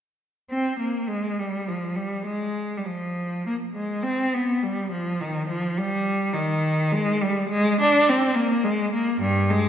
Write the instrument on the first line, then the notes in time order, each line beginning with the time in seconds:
cello
0.51 C4
0.80 A#3
1.08 G#3
1.39 G3
1.68 F3
1.96 G3
2.25 G#3
2.77 G3
2.85 F3
3.46 A#3
3.75 G#3
4.03 C4
4.34 B3
4.63 G3
4.92 F3
5.21 D#3
5.48 F3
5.78 G3
6.33 D#3
6.92 G#3
7.21 G3
7.49 G#3
7.81 D4
8.09 C4
8.35 A#3
8.64 G#3
8.93 A#3
9.21 G2
9.50 G#3